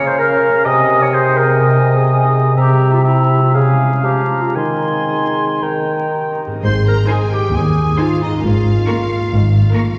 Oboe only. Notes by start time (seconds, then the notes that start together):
Already playing: F5
0.17 F5
0.65 D#5
1.13 D#5
2.57 E5
3.04 E5
3.54 F5
4.55 G#5
5.63 G5